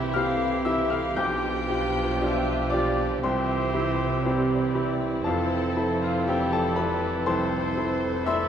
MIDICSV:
0, 0, Header, 1, 12, 480
1, 0, Start_track
1, 0, Tempo, 1018676
1, 555, Time_signature, 4, 2, 24, 8
1, 2956, Tempo, 993377
1, 4024, End_track
2, 0, Start_track
2, 0, Title_t, "Flute"
2, 0, Program_c, 0, 73
2, 0, Note_on_c, 0, 76, 75
2, 79, Note_on_c, 0, 77, 82
2, 86, Note_off_c, 0, 76, 0
2, 324, Note_on_c, 0, 76, 70
2, 331, Note_off_c, 0, 77, 0
2, 442, Note_on_c, 0, 77, 75
2, 449, Note_off_c, 0, 76, 0
2, 557, Note_off_c, 0, 77, 0
2, 560, Note_on_c, 0, 79, 85
2, 1163, Note_off_c, 0, 79, 0
2, 1285, Note_on_c, 0, 74, 71
2, 1438, Note_off_c, 0, 74, 0
2, 1524, Note_on_c, 0, 72, 74
2, 2217, Note_off_c, 0, 72, 0
2, 2475, Note_on_c, 0, 69, 78
2, 2835, Note_on_c, 0, 65, 74
2, 2842, Note_off_c, 0, 69, 0
2, 2955, Note_off_c, 0, 65, 0
2, 2958, Note_on_c, 0, 67, 72
2, 3076, Note_on_c, 0, 69, 75
2, 3083, Note_off_c, 0, 67, 0
2, 3201, Note_on_c, 0, 71, 77
2, 3208, Note_off_c, 0, 69, 0
2, 3438, Note_on_c, 0, 72, 81
2, 3446, Note_off_c, 0, 71, 0
2, 3914, Note_on_c, 0, 76, 87
2, 3921, Note_off_c, 0, 72, 0
2, 4024, Note_off_c, 0, 76, 0
2, 4024, End_track
3, 0, Start_track
3, 0, Title_t, "Violin section"
3, 0, Program_c, 1, 48
3, 0, Note_on_c, 1, 76, 83
3, 78, Note_off_c, 1, 76, 0
3, 78, Note_on_c, 1, 77, 77
3, 308, Note_on_c, 1, 76, 73
3, 316, Note_off_c, 1, 77, 0
3, 429, Note_off_c, 1, 76, 0
3, 432, Note_on_c, 1, 77, 77
3, 551, Note_on_c, 1, 79, 84
3, 554, Note_off_c, 1, 77, 0
3, 1277, Note_off_c, 1, 79, 0
3, 1281, Note_on_c, 1, 74, 67
3, 1520, Note_off_c, 1, 74, 0
3, 1522, Note_on_c, 1, 72, 78
3, 2235, Note_off_c, 1, 72, 0
3, 2474, Note_on_c, 1, 69, 77
3, 2817, Note_off_c, 1, 69, 0
3, 2845, Note_on_c, 1, 65, 72
3, 2958, Note_on_c, 1, 67, 70
3, 2960, Note_off_c, 1, 65, 0
3, 3076, Note_off_c, 1, 67, 0
3, 3077, Note_on_c, 1, 69, 74
3, 3193, Note_on_c, 1, 71, 69
3, 3197, Note_off_c, 1, 69, 0
3, 3434, Note_off_c, 1, 71, 0
3, 3438, Note_on_c, 1, 72, 87
3, 3906, Note_off_c, 1, 72, 0
3, 3922, Note_on_c, 1, 76, 83
3, 4024, Note_off_c, 1, 76, 0
3, 4024, End_track
4, 0, Start_track
4, 0, Title_t, "Viola section"
4, 0, Program_c, 2, 48
4, 0, Note_on_c, 2, 71, 62
4, 72, Note_on_c, 2, 69, 61
4, 74, Note_off_c, 2, 71, 0
4, 552, Note_off_c, 2, 69, 0
4, 552, Note_on_c, 2, 67, 68
4, 794, Note_off_c, 2, 67, 0
4, 796, Note_on_c, 2, 71, 72
4, 1033, Note_off_c, 2, 71, 0
4, 1036, Note_on_c, 2, 76, 74
4, 1278, Note_off_c, 2, 76, 0
4, 1279, Note_on_c, 2, 74, 63
4, 1519, Note_off_c, 2, 74, 0
4, 1519, Note_on_c, 2, 76, 75
4, 1985, Note_off_c, 2, 76, 0
4, 1996, Note_on_c, 2, 74, 72
4, 2474, Note_on_c, 2, 72, 69
4, 2475, Note_off_c, 2, 74, 0
4, 2955, Note_off_c, 2, 72, 0
4, 2958, Note_on_c, 2, 74, 68
4, 3436, Note_on_c, 2, 72, 63
4, 3437, Note_off_c, 2, 74, 0
4, 3674, Note_off_c, 2, 72, 0
4, 3677, Note_on_c, 2, 69, 71
4, 3911, Note_off_c, 2, 69, 0
4, 3916, Note_on_c, 2, 74, 78
4, 4024, Note_off_c, 2, 74, 0
4, 4024, End_track
5, 0, Start_track
5, 0, Title_t, "Grand piano"
5, 0, Program_c, 3, 0
5, 0, Control_c, 3, 64, 127
5, 0, Note_on_c, 3, 43, 67
5, 0, Note_on_c, 3, 60, 51
5, 0, Note_on_c, 3, 64, 58
5, 0, Note_on_c, 3, 67, 59
5, 0, Note_on_c, 3, 72, 66
5, 0, Note_on_c, 3, 74, 69
5, 0, Note_on_c, 3, 76, 69
5, 0, Note_on_c, 3, 84, 67
5, 0, Note_on_c, 3, 86, 74
5, 0, Note_on_c, 3, 88, 85
5, 51, Note_off_c, 3, 88, 0
5, 54, Note_off_c, 3, 76, 0
5, 54, Note_off_c, 3, 84, 0
5, 55, Note_off_c, 3, 64, 0
5, 56, Note_off_c, 3, 67, 0
5, 64, Note_on_c, 3, 89, 95
5, 73, Note_off_c, 3, 60, 0
5, 73, Note_on_c, 3, 60, 50
5, 74, Note_on_c, 3, 77, 72
5, 77, Note_on_c, 3, 64, 55
5, 77, Note_on_c, 3, 67, 57
5, 292, Note_off_c, 3, 89, 0
5, 295, Note_off_c, 3, 60, 0
5, 296, Note_off_c, 3, 67, 0
5, 297, Note_off_c, 3, 64, 0
5, 297, Note_off_c, 3, 77, 0
5, 306, Note_on_c, 3, 88, 93
5, 310, Note_on_c, 3, 64, 55
5, 311, Note_on_c, 3, 76, 72
5, 312, Note_on_c, 3, 67, 60
5, 422, Note_off_c, 3, 88, 0
5, 424, Note_off_c, 3, 76, 0
5, 424, Note_on_c, 3, 89, 79
5, 432, Note_on_c, 3, 77, 64
5, 533, Note_off_c, 3, 64, 0
5, 534, Note_off_c, 3, 67, 0
5, 541, Note_off_c, 3, 89, 0
5, 545, Note_off_c, 3, 77, 0
5, 549, Note_on_c, 3, 91, 90
5, 550, Note_on_c, 3, 35, 66
5, 554, Note_on_c, 3, 79, 56
5, 558, Note_off_c, 3, 86, 0
5, 558, Note_on_c, 3, 86, 62
5, 563, Control_c, 3, 64, 0
5, 564, Note_off_c, 3, 43, 0
5, 564, Note_off_c, 3, 72, 0
5, 565, Note_off_c, 3, 74, 0
5, 645, Control_c, 3, 64, 127
5, 786, Note_off_c, 3, 35, 0
5, 801, Note_on_c, 3, 67, 64
5, 802, Note_on_c, 3, 65, 61
5, 1021, Note_off_c, 3, 67, 0
5, 1022, Note_off_c, 3, 65, 0
5, 1041, Note_on_c, 3, 62, 58
5, 1045, Note_on_c, 3, 65, 55
5, 1045, Note_on_c, 3, 67, 64
5, 1257, Note_off_c, 3, 91, 0
5, 1260, Note_off_c, 3, 79, 0
5, 1262, Note_off_c, 3, 62, 0
5, 1262, Note_off_c, 3, 86, 0
5, 1264, Note_off_c, 3, 65, 0
5, 1264, Note_off_c, 3, 67, 0
5, 1274, Note_on_c, 3, 86, 83
5, 1280, Note_on_c, 3, 74, 70
5, 1290, Note_on_c, 3, 67, 61
5, 1291, Note_on_c, 3, 65, 55
5, 1499, Note_off_c, 3, 86, 0
5, 1503, Note_off_c, 3, 74, 0
5, 1505, Note_off_c, 3, 67, 0
5, 1506, Note_off_c, 3, 65, 0
5, 1524, Note_on_c, 3, 84, 76
5, 1527, Note_on_c, 3, 36, 72
5, 1527, Note_on_c, 3, 72, 61
5, 1528, Control_c, 3, 64, 0
5, 1533, Note_on_c, 3, 79, 66
5, 1608, Control_c, 3, 64, 127
5, 1754, Note_off_c, 3, 36, 0
5, 1761, Note_on_c, 3, 64, 54
5, 1761, Note_on_c, 3, 67, 61
5, 1977, Note_off_c, 3, 64, 0
5, 1977, Note_off_c, 3, 67, 0
5, 2007, Note_on_c, 3, 60, 55
5, 2008, Note_on_c, 3, 64, 55
5, 2008, Note_on_c, 3, 67, 60
5, 2217, Note_off_c, 3, 84, 0
5, 2218, Note_off_c, 3, 72, 0
5, 2220, Note_off_c, 3, 60, 0
5, 2221, Note_off_c, 3, 64, 0
5, 2221, Note_off_c, 3, 67, 0
5, 2221, Note_off_c, 3, 79, 0
5, 2237, Note_on_c, 3, 64, 57
5, 2239, Note_on_c, 3, 67, 63
5, 2457, Note_off_c, 3, 64, 0
5, 2458, Note_off_c, 3, 67, 0
5, 2470, Note_on_c, 3, 81, 75
5, 2479, Note_on_c, 3, 77, 63
5, 2480, Note_on_c, 3, 69, 58
5, 2482, Control_c, 3, 64, 0
5, 2482, Note_on_c, 3, 41, 78
5, 2550, Control_c, 3, 64, 127
5, 2713, Note_off_c, 3, 41, 0
5, 2714, Note_off_c, 3, 69, 0
5, 2718, Note_on_c, 3, 64, 60
5, 2721, Note_on_c, 3, 69, 64
5, 2815, Note_off_c, 3, 81, 0
5, 2819, Note_off_c, 3, 77, 0
5, 2841, Note_on_c, 3, 77, 72
5, 2846, Note_on_c, 3, 65, 61
5, 2938, Note_off_c, 3, 64, 0
5, 2939, Note_off_c, 3, 69, 0
5, 2950, Note_off_c, 3, 77, 0
5, 2952, Note_off_c, 3, 65, 0
5, 2958, Note_on_c, 3, 79, 75
5, 2962, Note_on_c, 3, 60, 59
5, 2962, Note_on_c, 3, 67, 67
5, 2965, Note_on_c, 3, 64, 60
5, 2965, Note_on_c, 3, 69, 60
5, 3070, Note_off_c, 3, 79, 0
5, 3072, Note_off_c, 3, 67, 0
5, 3076, Note_off_c, 3, 69, 0
5, 3078, Note_on_c, 3, 81, 89
5, 3083, Note_on_c, 3, 69, 66
5, 3181, Note_off_c, 3, 60, 0
5, 3183, Note_off_c, 3, 64, 0
5, 3189, Note_off_c, 3, 81, 0
5, 3190, Note_on_c, 3, 83, 80
5, 3192, Note_off_c, 3, 69, 0
5, 3196, Note_on_c, 3, 71, 67
5, 3207, Note_on_c, 3, 64, 59
5, 3207, Note_on_c, 3, 69, 63
5, 3415, Note_off_c, 3, 83, 0
5, 3418, Note_off_c, 3, 71, 0
5, 3421, Note_off_c, 3, 64, 0
5, 3421, Note_off_c, 3, 69, 0
5, 3434, Note_on_c, 3, 84, 90
5, 3436, Note_on_c, 3, 72, 74
5, 3437, Note_on_c, 3, 81, 68
5, 3441, Note_on_c, 3, 36, 67
5, 3669, Note_off_c, 3, 36, 0
5, 3682, Note_on_c, 3, 64, 58
5, 3685, Note_on_c, 3, 69, 57
5, 3893, Note_off_c, 3, 84, 0
5, 3895, Note_off_c, 3, 72, 0
5, 3895, Note_off_c, 3, 81, 0
5, 3899, Note_off_c, 3, 64, 0
5, 3900, Note_off_c, 3, 69, 0
5, 3918, Note_on_c, 3, 88, 92
5, 3923, Note_on_c, 3, 76, 72
5, 3923, Note_on_c, 3, 84, 78
5, 3925, Note_on_c, 3, 60, 53
5, 3927, Note_on_c, 3, 64, 52
5, 3930, Note_on_c, 3, 69, 58
5, 4024, Note_off_c, 3, 60, 0
5, 4024, Note_off_c, 3, 64, 0
5, 4024, Note_off_c, 3, 69, 0
5, 4024, Note_off_c, 3, 76, 0
5, 4024, Note_off_c, 3, 84, 0
5, 4024, Note_off_c, 3, 88, 0
5, 4024, End_track
6, 0, Start_track
6, 0, Title_t, "Oboe"
6, 0, Program_c, 4, 68
6, 0, Note_on_c, 4, 67, 65
6, 1500, Note_off_c, 4, 67, 0
6, 1517, Note_on_c, 4, 67, 77
6, 2328, Note_off_c, 4, 67, 0
6, 2473, Note_on_c, 4, 69, 59
6, 4024, Note_off_c, 4, 69, 0
6, 4024, End_track
7, 0, Start_track
7, 0, Title_t, "Violin section"
7, 0, Program_c, 5, 48
7, 0, Note_on_c, 5, 64, 82
7, 557, Note_on_c, 5, 65, 74
7, 558, Note_off_c, 5, 64, 0
7, 1502, Note_off_c, 5, 65, 0
7, 1515, Note_on_c, 5, 64, 64
7, 4024, Note_off_c, 5, 64, 0
7, 4024, End_track
8, 0, Start_track
8, 0, Title_t, "Clarinet"
8, 0, Program_c, 6, 71
8, 0, Note_on_c, 6, 60, 66
8, 409, Note_off_c, 6, 60, 0
8, 561, Note_on_c, 6, 62, 60
8, 1520, Note_on_c, 6, 60, 68
8, 1527, Note_off_c, 6, 62, 0
8, 4024, Note_off_c, 6, 60, 0
8, 4024, End_track
9, 0, Start_track
9, 0, Title_t, "French horn section"
9, 0, Program_c, 7, 60
9, 0, Note_on_c, 7, 52, 70
9, 0, Note_on_c, 7, 67, 71
9, 482, Note_off_c, 7, 52, 0
9, 482, Note_off_c, 7, 67, 0
9, 562, Note_on_c, 7, 67, 69
9, 563, Note_on_c, 7, 53, 70
9, 1504, Note_off_c, 7, 67, 0
9, 1517, Note_on_c, 7, 52, 73
9, 1517, Note_on_c, 7, 67, 78
9, 1523, Note_off_c, 7, 53, 0
9, 2454, Note_off_c, 7, 52, 0
9, 2454, Note_off_c, 7, 67, 0
9, 2479, Note_on_c, 7, 52, 68
9, 2479, Note_on_c, 7, 69, 66
9, 2663, Note_off_c, 7, 52, 0
9, 2664, Note_off_c, 7, 69, 0
9, 3437, Note_on_c, 7, 52, 70
9, 3437, Note_on_c, 7, 69, 71
9, 3619, Note_off_c, 7, 52, 0
9, 3619, Note_off_c, 7, 69, 0
9, 4024, End_track
10, 0, Start_track
10, 0, Title_t, "Bassoon"
10, 0, Program_c, 8, 70
10, 0, Note_on_c, 8, 52, 70
10, 408, Note_off_c, 8, 52, 0
10, 559, Note_on_c, 8, 53, 61
10, 1996, Note_on_c, 8, 52, 66
10, 2003, Note_off_c, 8, 53, 0
10, 4024, Note_off_c, 8, 52, 0
10, 4024, End_track
11, 0, Start_track
11, 0, Title_t, "Cello section"
11, 0, Program_c, 10, 48
11, 0, Note_on_c, 10, 48, 69
11, 535, Note_off_c, 10, 48, 0
11, 557, Note_on_c, 10, 47, 70
11, 1501, Note_off_c, 10, 47, 0
11, 1522, Note_on_c, 10, 48, 78
11, 2475, Note_off_c, 10, 48, 0
11, 2479, Note_on_c, 10, 41, 72
11, 4024, Note_off_c, 10, 41, 0
11, 4024, End_track
12, 0, Start_track
12, 0, Title_t, "Double bass section"
12, 0, Program_c, 11, 48
12, 0, Note_on_c, 11, 36, 67
12, 536, Note_off_c, 11, 36, 0
12, 557, Note_on_c, 11, 35, 75
12, 1501, Note_off_c, 11, 35, 0
12, 1519, Note_on_c, 11, 36, 74
12, 2474, Note_off_c, 11, 36, 0
12, 2476, Note_on_c, 11, 29, 67
12, 4024, Note_off_c, 11, 29, 0
12, 4024, End_track
0, 0, End_of_file